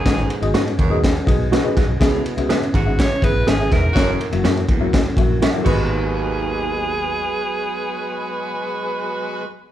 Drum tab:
CC |----------------|----------------|--------------x-|----------------|
RD |x-xxxxx-x-x-x-x-|x-xxxxx-x-x-x-x-|x-xxxxx-x-x-x---|----------------|
SD |o---o---o---o-o-|o---o---o---o-o-|o---o---o---o---|----------------|
BD |o-----o-o-o---o-|o-----o-o-o---o-|o-----o-o-o---o-|----------------|

CC |----------------|
RD |----------------|
SD |----------------|
BD |----------------|